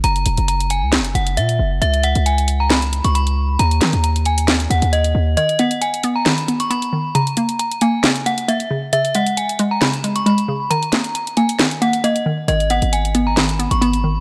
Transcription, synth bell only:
X:1
M:4/4
L:1/16
Q:1/4=135
K:C#dor
V:1 name="Synth bell"
a4 a2 g2 z2 f2 e2 z2 | e2 f2 g3 a b3 c' b4 | a4 a2 g2 z2 f2 d2 z2 | d2 f2 g3 a b3 c' b4 |
a4 a2 g2 z2 f2 e2 z2 | e2 f2 g3 a b3 c' b4 | a4 a2 g2 z2 f2 d2 z2 | d2 f2 g3 a b3 c' b4 |]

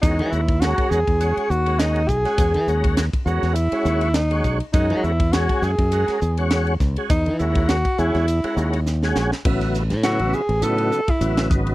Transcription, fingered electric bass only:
X:1
M:4/4
L:1/16
Q:"Swing 16ths" 1/4=102
K:Elyd
V:1 name="Fingered electric bass" clef=bass
E,, E, D,,3 z E,, E,,2 z D,,4 B,,, z | E,, E, D,,3 z E,, E,,2 z D,,4 B,,, z | F,, F, E,,3 z F,, F,,2 z E,,4 C,, z | E,, E, D,,3 z E,, E,,2 z D,,4 A,,, z |
[K:Alyd] A,,,3 A,,2 A,,, z A,,, A,,2 z2 A,,,2 G,,,2 |]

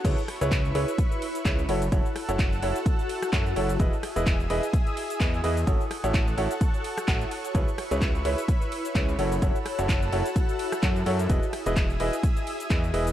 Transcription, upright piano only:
X:1
M:4/4
L:1/16
Q:"Swing 16ths" 1/4=128
K:F#dor
V:1 name="Upright piano"
[EGBc] z2 [EGBc]2 z [EGBc] z4 z [EGBc] z [EFAc] z | [EFAc] z2 [EFAc]2 z [EFAc] z4 z [EFAc] z [EFAc] z | [EGBd] z2 [EGBd]2 z [EGBd] z4 z [EGBd] z [EGBd] z | [EFAc] z2 [EFAc]2 z [EFAc] z4 z [EFAf]2 z2 |
[EGBc] z2 [EGBc]2 z [EGBc] z4 z [EGBc] z [EFAc] z | [EFAc] z2 [EFAc]2 z [EFAc] z4 z [EFAc] z [EFAc] z | [EGBd] z2 [EGBd]2 z [EGBd] z4 z [EGBd] z [EGBd] z |]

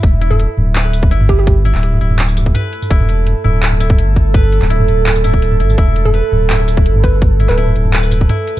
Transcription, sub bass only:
X:1
M:4/4
L:1/16
Q:"Swing 16ths" 1/4=167
K:Em
V:1 name="Sub bass" clef=bass
E,,,4- E,,, z D,,,6 G,,,4- | G,,,3 D,,,3 D,,,6 z4 | E,,,4- E,,, z D,,,6 G,,,4- | G,,,3 D,,,3 D,,,8 G,,,2 |
E,,,4- E,,, z D,,,6 G,,,4- | G,,,3 D,,,3 D,,,6 z4 |]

